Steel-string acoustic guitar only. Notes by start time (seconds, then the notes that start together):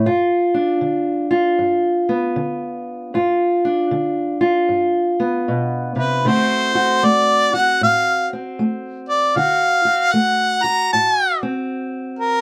0.06 G2 F4
0.54 D4
0.81 D3
1.31 F4
1.59 G2
2.09 B3
2.36 D3
3.14 G2 F4
3.65 D4
3.91 D3
4.41 F4
4.69 G2
5.20 B3
5.48 B2
5.96 C3
6.25 D3 A3 C4 F#4
6.75 F#4
7.03 A3
7.54 F#4
7.81 A2
8.33 C4
8.59 A3
9.36 D3 F#4
9.85 F#4
10.13 A3
10.64 F#4
10.93 A2
11.43 C4